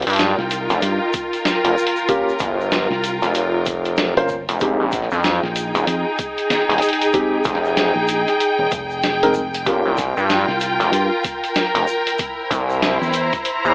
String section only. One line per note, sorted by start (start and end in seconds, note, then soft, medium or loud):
0.00 1.61 D#4 medium
0.00 6.09 F4 loud
0.00 5.47 A#4 medium
0.00 4.60 G5 medium
4.61 10.69 D#4 medium
4.80 9.67 G#4 medium
4.92 13.22 G5 medium
9.67 12.20 F4 loud
9.98 13.23 A#4 medium
12.20 13.74 E4 medium
12.41 13.74 C5 medium
13.21 13.74 A#5 medium